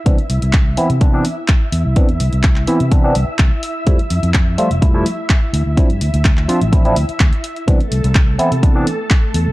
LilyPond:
<<
  \new Staff \with { instrumentName = "String machine" } { \time 4/4 \key c \major \tempo 4 = 126 <e'' e'''>1~ | <e'' e'''>1~ | <e'' e'''>1~ | <e'' e'''>1 |
<a' a''>1 | }
  \new Staff \with { instrumentName = "Tine electric piano" } { \time 4/4 \key c \major <e b c' d'>16 r4 r16 <e b c' e'>16 r16 <e b c' d'>16 <e b c' d'>16 r4. | <e b c' d'>16 r4 r16 <e b c' e'>16 r16 <e b c' d'>16 <e b c' d'>16 r4. | <f g a e'>16 r4 r16 <f g a f'>16 r16 <f g a e'>16 <f g a e'>16 r4. | <f c' d' e'>16 r4 r16 <f c' d' f'>16 r16 <f c' d' e'>16 <f c' d' e'>16 r4. |
<e b c' d'>16 r4 r16 <e b c' e'>16 r16 <e b c' d'>16 <e b c' d'>16 r4. | }
  \new Staff \with { instrumentName = "Fingered electric bass" } { \clef bass \time 4/4 \key c \major c,16 r16 c,16 c,8. r16 c8. r4 e,16 c,16 | r16 e,16 c,16 c,8. r16 c8. c,16 r16 c,16 r8. | f,16 r16 f,16 f,8. r16 f,,8. r4 d,16 d,16 | r16 g,16 d,16 d,8. r16 a,,8. d,16 r16 d,16 r8. |
c,16 r16 c,16 c,8. r16 c8. r4 e,16 c,16 | }
  \new DrumStaff \with { instrumentName = "Drums" } \drummode { \time 4/4 <hh bd>16 hh16 hho16 hh16 <hc hh bd>8 hho16 hh16 <hh bd>8 hho8 <hc hh bd>8 hho8 | <hh bd>16 hh16 hho16 hh16 <hc hh bd>16 hc16 hho16 hh16 <hh bd>8 hho8 <hc hh bd>8 hho8 | <hh bd>16 hh16 hho16 hh16 <hc hh bd>8 hho16 hh16 <hh bd>8 hho8 <hc hh bd>8 hho8 | <hh bd>16 hh16 hho16 hh16 <hc hh bd>16 hc16 hho16 hh16 <hh bd>16 hh16 hho16 hh16 <hc hh bd>16 hh16 hho16 hh16 |
<hh bd>16 hh16 hho16 hh16 <hc hh bd>8 hho16 hh16 <hh bd>8 hho8 <hc hh bd>8 hho8 | }
>>